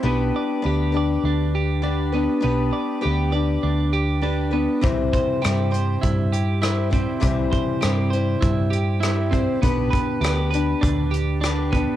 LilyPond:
<<
  \new Staff \with { instrumentName = "Clean electric guitar" } { \time 4/4 \key c \major \tempo 4 = 100 b8 d''8 g'8 d''8 d'8 g'8 d'8 b8 | b8 d''8 g'8 d''8 d'8 g'8 d'8 b8 | c8 c''8 g'8 c''8 e'8 g'8 e'8 c'8 | c8 c''8 g'8 c''8 e'8 g'8 e'8 c'8 |
b8 b'8 g'8 b'8 d'8 g'8 d'8 b8 | }
  \new Staff \with { instrumentName = "Steel-string acoustic guitar" } { \time 4/4 \key c \major <b d' g' b'>4 <b d' g' b'>8 <d' g' b'>4. <b d' g' b'>8 <d' g' b'>8 | <b d' g' b'>4 <b d' g' b'>8 <d' g' b'>4. <b d' g' b'>8 <d' g' b'>8 | <c e g c' e' c''>4 <g c' e' c''>8 <g c' e' c''>4. <g c' e' c''>8 <g c' e' c''>8 | <c e g c' e' c''>4 <g c' e' c''>8 <g c' e' c''>4. <g c' e' c''>8 <g c' e' c''>8 |
<b d' g' b'>4 <b d' g' b'>8 <d' g' b'>4. <b d' g' b'>8 <d' g' b'>8 | }
  \new Staff \with { instrumentName = "Picked electric bass" } { \clef bass \time 4/4 \key c \major b,,8 r8 d,4 d,2 | b,,8 r8 d,4 d,2 | c,8 r8 g,4 g,2 | c,8 r8 g,4 g,2 |
b,,8 r8 d,4 d,2 | }
  \new DrumStaff \with { instrumentName = "Drums" } \drummode { \time 4/4 r4 r4 r4 r4 | r4 r4 r4 r4 | <hh bd>8 <hh bd>8 <hh ss>8 hh8 <hh bd>8 hh8 <hh ss>8 <hh bd>8 | <hh bd>8 <hh bd>8 <hh ss>8 hh8 <hh bd>8 hh8 <hh ss>8 <hh bd>8 |
<hh bd>8 <hh bd>8 <hh ss>8 hh8 <hh bd>8 hh8 <hh ss>8 <hh bd>8 | }
>>